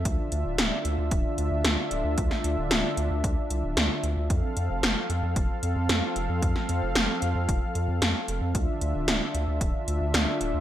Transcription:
<<
  \new Staff \with { instrumentName = "Analog synth pad" } { \time 4/4 \key d \minor \tempo 4 = 113 <d d' f' e''>1~ | <d d' f' e''>1 | <f c' a' f''>1~ | <f c' a' f''>1 |
<d d' f' e''>1 | }
  \new Staff \with { instrumentName = "Analog synth bass" } { \clef bass \time 4/4 \key d \minor d,16 r16 d,16 d,,16 d,,16 r16 d,16 d,16 d,,16 r16 d,16 d,16 d,16 r16 d,,16 d,16 | d,16 r16 d,16 d,,16 d,,16 r16 d,16 d,16 d,16 r16 c,16 d,,16 d,16 r16 d,16 d,16 | f,16 r16 f,16 f,,16 f,,16 r16 f,16 f,16 f,,16 r16 f,16 f,16 f,16 r16 f,,16 f,16 | f,16 r16 f,16 f,,16 f,,16 r16 f,16 f,16 f,,16 r16 f,16 f,16 f,16 r16 f,,16 f,16 |
d,16 r16 d,16 d,,16 d,,16 r16 d,16 d,16 d,,16 r16 d,16 d,16 d,16 r16 d,,16 d,16 | }
  \new DrumStaff \with { instrumentName = "Drums" } \drummode { \time 4/4 <hh bd>8 hh8 <hh sn>8 hh8 <hh bd>8 hh8 <hh sn>8 hh8 | <hh bd>16 sn16 hh8 <hh sn>8 hh8 <hh bd>8 hh8 <hh sn>8 hh8 | <hh bd>8 hh8 <hh sn>8 hh8 <hh bd>8 hh8 <hh sn>8 hh8 | <hh bd>16 sn16 hh8 <hh sn>8 hh8 <hh bd>8 hh8 <hh sn>8 hh8 |
<hh bd>8 hh8 <hh sn>8 hh8 <hh bd>8 hh8 <hh sn>8 hh8 | }
>>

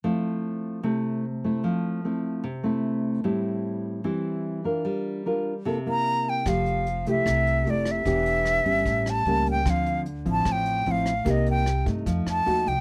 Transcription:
<<
  \new Staff \with { instrumentName = "Flute" } { \time 4/4 \key f \major \tempo 4 = 150 r1 | r1 | r1 | r2 r8 bes''4 g''8 |
f''4. e''4. d''8 e''8~ | e''2~ e''8 a''4 g''8 | f''4 r8 a''8 g''4 f''4 | ees''8 g''4 r4 a''4 g''8 | }
  \new Staff \with { instrumentName = "Nylon-string guitar" } { \time 4/4 \key f \major << { <a c' e'>2 <a c' e'>4 r8 <a c' e'>8~ | <a c' e'>4 <a c' e'>4 r8 <a c' e'>4. | <g c' e'>2 <g c' e'>4. <d' f' bes'>8~ | <d' f' bes'>4 <d' f' bes'>8 r8 <bes e' a'>8 <bes e'>4. |
<a g'>4 r8 <a e' g'>4. <a e' g'>4 | <b d' g'>4. <g des'>4. <g bes cis'>4 | <f c'>4 r8 <f c' e'>4. <f c' e'>8 r8 | <bes ees' g'>4 r8 <a ees'>4. <a ees' ges'>8 r8 | } \\ { f2 c2 | f2 c2 | a,2 e2 | g2 c2 |
f2 c2 | e2 a,2 | d2 a,2 | c2 f2 | } >> }
  \new Staff \with { instrumentName = "Upright bass" } { \clef bass \time 4/4 \key f \major r1 | r1 | r1 | r1 |
f,,4. c,8 c,4 f,,4 | e,,4. g,,8 a,,4 cis,4 | d,4. a,,8 a,,4 a,,4 | c,4. g,8 f,8 f,8 ees,8 c,8 | }
  \new DrumStaff \with { instrumentName = "Drums" } \drummode { \time 4/4 r4 r4 r4 r4 | r4 r4 r4 r4 | r4 r4 r4 r4 | r4 r4 r4 r4 |
<hh bd ss>8 hh8 hh8 hh8 <hh bd ss>8 hh8 hh8 <hh ss>8 | <hh bd>8 hh8 <hh ss>8 hh8 <hh bd>8 <hh ss>8 hh8 hh8 | <hh bd ss>8 hh8 hh8 hh8 <hh bd ss>8 hh8 hh8 <hh ss>8 | <hh bd>8 hh8 <hh ss>8 <hh bd>8 <hh bd>8 <hh ss>8 hh8 hh8 | }
>>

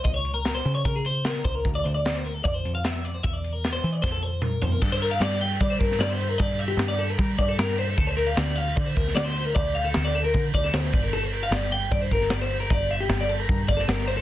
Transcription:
<<
  \new Staff \with { instrumentName = "Clean electric guitar" } { \time 4/4 \key g \dorian \tempo 4 = 152 ees''16 des''8 bes'8 c''8 des''16 bes'16 aes'16 c''8 bes'8 c''16 bes'16 | r16 d''16 c''16 d''8 c''16 bes'16 a'16 d''16 c''8 f''16 e''8 d''16 c''16 | e''16 d''8 bes'8 c''8 d''16 c''16 a'16 c''8 bes'8 c''16 bes'16 | a'16 c''16 bes'16 f''16 d''8 g''8 d''16 c''16 bes'8 d''16 c''8 bes'16 |
d''8 e''16 g'8 d''16 a'16 bes'8 r16 d''16 a'16 bes'8 c''16 a'16 | a'16 c''16 bes'16 f''16 d''8 f''8 d''16 c''16 bes'8 d''16 c''8 bes'16 | d''8 f''16 a'8 d''16 a'16 bes'8 r16 d''16 a'16 c''8 d''16 bes'16 | a'16 c''16 bes'16 f''16 d''8 g''8 d''16 c''16 bes'8 d''16 c''8 bes'16 |
d''8 e''16 g'8 d''16 a'16 bes'8 r16 d''16 a'16 bes'8 c''16 a'16 | }
  \new Staff \with { instrumentName = "Picked electric bass" } { \clef bass \time 4/4 \key g \dorian des,4. des8 des4. des,8 | d,8 d,4. f,8 f,4. | e,4. e8 f,4. f,8 | g,4 g,4 g8 g,8 g,4 |
g,4 g,4 g8 g,8 g,4 | d,4 d,4 d8 d,8 d,4 | d,4 d,4 d8 d,8 d,8 g,,8~ | g,,4 g,,4 g,8 g,,8 g,,4 |
g,,4 g,,4 g,8 g,,8 g,,4 | }
  \new DrumStaff \with { instrumentName = "Drums" } \drummode { \time 4/4 <hh bd>8 hh8 <hh sn>8 hh8 <hh bd>8 hh8 <hh sn>8 <hh bd>8 | <hh bd>8 hh8 <hh sn>8 hh8 <hh bd>8 hh8 <hh sn>8 hh8 | <hh bd>8 hh8 <hh sn>8 hh8 <bd sn>4 toml8 tomfh8 | <cymc bd>8 cymc8 <cymc sn>8 cymc8 <cymc bd>8 <cymc bd>16 sn16 <cymc sn>8 cymc8 |
<cymc bd>8 cymc8 <cymc sn>8 cymc8 <cymc bd>8 <cymc bd>8 <cymc sn>8 cymc8 | <cymc bd>8 cymc8 <cymc sn>8 cymc8 <cymc bd>8 <cymc bd>16 sn16 <cymc sn>8 cymc8 | <cymc bd>8 cymc8 <cymc sn>8 cymc8 <cymc bd>8 <cymc bd>16 sn16 <cymc sn>8 <cymc bd>8 | cymc8 cymc8 <cymc sn>8 cymc8 <cymc bd>8 <cymc bd>16 sn16 <cymc sn>8 cymc8 |
<cymc bd>8 cymc8 <cymc sn>8 cymc8 <cymc bd>8 <cymc bd>16 sn16 <cymc sn>8 cymc8 | }
>>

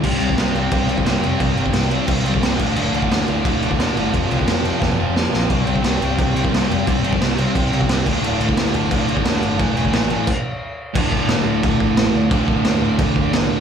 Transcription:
<<
  \new Staff \with { instrumentName = "Distorted electric guitar" } { \clef bass \time 4/4 \key d \minor \tempo 4 = 176 <c g c'>8 <c g c'>8 <c g c'>8 <c g c'>8 <c g c'>8 <c g c'>8 <c g c'>8 <c g c'>8 | <c g c'>8 <c g c'>8 <c g c'>8 <c g c'>8 <c g c'>8 <c g c'>8 <c g c'>8 <d, a, d>8 | <d, a, d>8 <d, a, d>8 <d, a, d>8 <d, a, d>8 <d, a, d>8 <d, a, d>8 <d, a, d>8 <d, a, d>8 | <f, c f>8 <f, c f>8 <f, c f>8 <f, c f>8 <f, c f>8 <f, c f>8 <f, c f>8 <f, c f>8 |
<c g c'>8 <c g c'>8 <c g c'>8 <c g c'>8 <c g c'>8 <c g c'>8 <c g c'>8 <c g c'>8 | <c g c'>8 <c g c'>8 <c g c'>8 <c g c'>8 <c g c'>8 <c g c'>8 <c g c'>8 <d, a, d>8 | <d, a, d>8 <d, a, d>8 <d, a, d>8 <d, a, d>8 <d, a, d>8 <d, a, d>8 <d, a, d>8 <d, a, d>8 | <a, e a>8 <a, e a>8 <a, e a>8 <a, e a>8 r2 |
<d, a, d>1 | <d, a, d>1 | }
  \new Staff \with { instrumentName = "Distorted electric guitar" } { \clef bass \time 4/4 \key d \minor <c g c'>8 <c g c'>8 <c g c'>8 <c g c'>8 <c g c'>8 <c g c'>8 <c g c'>8 <c g c'>8 | <c g c'>8 <c g c'>8 <c g c'>8 <c g c'>8 <c g c'>8 <c g c'>8 <c g c'>8 <d, a, d>8 | <d, a, d>8 <d, a, d>8 <d, a, d>8 <d, a, d>8 <d, a, d>8 <d, a, d>8 <d, a, d>8 <d, a, d>8 | <f, c f>8 <f, c f>8 <f, c f>8 <f, c f>8 <f, c f>8 <f, c f>8 <f, c f>8 <f, c f>8 |
<c g c'>8 <c g c'>8 <c g c'>8 <c g c'>8 <c g c'>8 <c g c'>8 <c g c'>8 <c g c'>8 | <c g c'>8 <c g c'>8 <c g c'>8 <c g c'>8 <c g c'>8 <c g c'>8 <c g c'>8 <d, a, d>8 | <d, a, d>8 <d, a, d>8 <d, a, d>8 <d, a, d>8 <d, a, d>8 <d, a, d>8 <d, a, d>8 <d, a, d>8 | <a, e a>8 <a, e a>8 <a, e a>8 <a, e a>8 r2 |
<d, a, d>1 | <d, a, d>1 | }
  \new Staff \with { instrumentName = "Picked electric bass" } { \clef bass \time 4/4 \key d \minor c,8 c,8 c,8 c,8 c,4 c,8 f,,8 | c,8 g,,8 c,4 c,8 c,8 c,8 d,,8 | d,,8 d,,8 d,,8 d,,8 d,,4 d,,8 g,,8 | f,,8 c,8 f,,4 f,,8 f,,8 f,8 bes,,8 |
c,8 c,8 c,8 c,8 c,4 c,8 f,,8 | c,8 g,,8 c,4 c,8 c,8 c,8 d,,8 | d,,8 d,,8 d,,8 d,,8 d,,4 d,,8 g,,8 | a,,8 e,,8 a,,4 r2 |
d,,8 d,,8 d,,8 d,,8 d,,8 d,,8 a,,8 d,8 | d,,8 d,,8 d,,8 d,,8 d,,8 d,,8 a,,8 d,8 | }
  \new DrumStaff \with { instrumentName = "Drums" } \drummode { \time 4/4 <cymc bd>8 cymc16 bd16 <cymc sn>8 cymc8 <cymc bd>8 cymc16 bd16 <cymc sn>8 cymc8 | <cymc bd>8 cymc16 bd16 <cymc sn>8 cymc8 <cymc bd>8 cymc16 bd16 <cymc sn>8 <cymc bd>8 | cymc8 cymc16 bd16 <cymc sn>8 cymc8 <cymc bd>8 cymc16 bd16 <cymc sn>8 cymc8 | <cymc bd>8 cymc16 bd16 <cymc sn>8 cymc8 <bd sn>4 sn8 sn8 |
<cymc bd>8 cymc16 bd16 <cymc sn>8 cymc8 <cymc bd>8 cymc16 bd16 <cymc sn>8 cymc8 | <cymc bd>8 cymc16 bd16 <cymc sn>8 cymc8 <cymc bd>8 cymc16 bd16 <cymc sn>8 <cymc bd>8 | cymc8 cymc16 bd16 <cymc sn>8 cymc8 <cymc bd>8 cymc16 bd16 <cymc sn>8 cymc8 | <cymc bd>8 cymc16 bd16 <cymc sn>8 cymc8 <cymc bd>4 r4 |
<cymc bd>8 bd8 <cymc sn>4 <cymc bd>8 bd8 <cymc sn>4 | <cymc bd>8 bd8 <cymc sn>4 <cymc bd>8 bd8 <cymc sn>4 | }
>>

